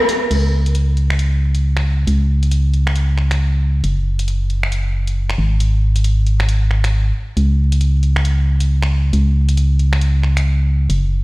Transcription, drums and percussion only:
0.09 open hi-hat loud
0.31 closed hi-hat medium
0.31 crash medium
0.66 closed hi-hat medium
0.75 closed hi-hat medium
0.97 closed hi-hat soft
1.10 finger snap medium
1.19 closed hi-hat medium
1.55 closed hi-hat medium
1.77 finger snap soft
2.07 closed hi-hat medium
2.43 closed hi-hat medium
2.51 closed hi-hat medium
2.74 closed hi-hat soft
2.87 finger snap medium
2.96 closed hi-hat medium
3.18 finger snap soft
3.31 finger snap soft
3.31 closed hi-hat medium
3.84 closed hi-hat medium
4.19 closed hi-hat medium
4.28 closed hi-hat medium
4.50 closed hi-hat soft
4.63 finger snap medium
4.72 closed hi-hat medium
5.07 closed hi-hat medium
5.30 finger snap soft
5.60 closed hi-hat medium
5.96 closed hi-hat medium
6.04 closed hi-hat medium
6.27 closed hi-hat soft
6.40 finger snap medium
6.49 closed hi-hat medium
6.71 finger snap soft
6.84 finger snap soft
6.84 closed hi-hat medium
7.37 closed hi-hat medium
7.72 closed hi-hat medium
7.81 closed hi-hat medium
8.03 closed hi-hat soft
8.16 finger snap medium
8.25 closed hi-hat medium
8.60 closed hi-hat medium
8.82 finger snap soft
9.13 closed hi-hat medium
9.49 closed hi-hat medium
9.57 closed hi-hat medium
9.79 closed hi-hat soft
9.93 finger snap medium
10.01 closed hi-hat medium
10.23 finger snap soft
10.37 finger snap soft
10.37 closed hi-hat medium
10.90 closed hi-hat medium

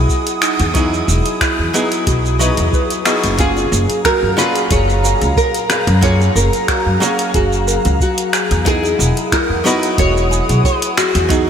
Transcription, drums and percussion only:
0.09 kick loud
0.09 shaker soft
0.27 closed hi-hat medium
0.27 shaker soft
0.42 finger snap medium
0.42 closed hi-hat soft
0.42 shaker medium
0.59 closed hi-hat soft
0.59 shaker soft
0.75 kick loud
0.75 closed hi-hat medium
0.75 shaker soft
0.94 shaker soft
1.09 shaker medium
1.26 closed hi-hat soft
1.26 shaker soft
1.41 finger snap medium
1.41 kick loud
1.41 closed hi-hat medium
1.41 shaker soft
1.74 closed hi-hat soft
1.74 shaker medium
1.92 closed hi-hat soft
1.92 shaker soft
2.07 kick loud
2.07 closed hi-hat medium
2.07 shaker soft
2.26 shaker soft
2.41 shaker medium
2.57 closed hi-hat soft
2.57 shaker soft
2.73 kick loud
2.73 shaker soft
2.90 closed hi-hat medium
2.90 shaker soft
3.06 finger snap medium
3.06 closed hi-hat soft
3.06 shaker medium
3.24 closed hi-hat soft
3.24 shaker soft
3.39 kick loud
3.39 closed hi-hat medium
3.39 shaker soft
3.57 high bongo soft
3.57 shaker soft
3.73 shaker medium
3.90 closed hi-hat soft
3.90 shaker soft
4.05 finger snap medium
4.05 kick loud
4.05 closed hi-hat medium
4.05 shaker soft
4.38 high bongo medium
4.38 shaker medium
4.56 closed hi-hat soft
4.56 shaker soft
4.71 kick loud
4.71 closed hi-hat medium
4.71 shaker soft
4.89 shaker soft
5.04 high bongo soft
5.04 shaker medium
5.22 closed hi-hat soft
5.22 shaker soft
5.37 kick loud
5.37 shaker soft
5.54 closed hi-hat soft
5.54 shaker soft
5.70 finger snap medium
5.70 closed hi-hat soft
5.70 high bongo medium
5.70 shaker medium
5.87 closed hi-hat soft
5.87 shaker soft
6.02 kick loud
6.02 closed hi-hat medium
6.02 shaker soft
6.20 high bongo soft
6.20 shaker soft
6.37 shaker medium
6.53 closed hi-hat soft
6.53 shaker soft
6.68 finger snap medium
6.68 kick loud
6.68 closed hi-hat medium
6.68 shaker soft
7.02 high bongo medium
7.02 shaker medium
7.19 closed hi-hat soft
7.19 shaker soft
7.34 kick loud
7.34 closed hi-hat medium
7.34 shaker soft
7.53 shaker soft
7.68 shaker medium
7.85 closed hi-hat soft
7.85 shaker soft
8.00 kick loud
8.00 shaker soft
8.18 closed hi-hat medium
8.18 shaker soft
8.33 finger snap medium
8.33 closed hi-hat soft
8.33 shaker medium
8.51 closed hi-hat soft
8.51 shaker soft
8.66 kick loud
8.66 closed hi-hat medium
8.66 shaker soft
8.84 high bongo soft
8.84 shaker soft
9.00 shaker medium
9.17 closed hi-hat soft
9.17 shaker soft
9.32 finger snap medium
9.32 kick loud
9.32 closed hi-hat medium
9.32 shaker soft
9.66 high bongo medium
9.66 shaker medium
9.83 closed hi-hat soft
9.83 shaker soft
9.98 kick loud
9.98 closed hi-hat medium
9.98 shaker soft
10.17 shaker soft
10.31 high bongo soft
10.31 shaker medium
10.49 closed hi-hat soft
10.49 shaker soft
10.64 kick loud
10.64 shaker soft
10.82 closed hi-hat medium
10.82 shaker soft
10.97 finger snap medium
10.97 closed hi-hat medium
10.97 high bongo medium
10.97 shaker medium
11.15 closed hi-hat soft
11.15 shaker soft
11.30 kick loud
11.30 closed hi-hat medium
11.30 shaker soft

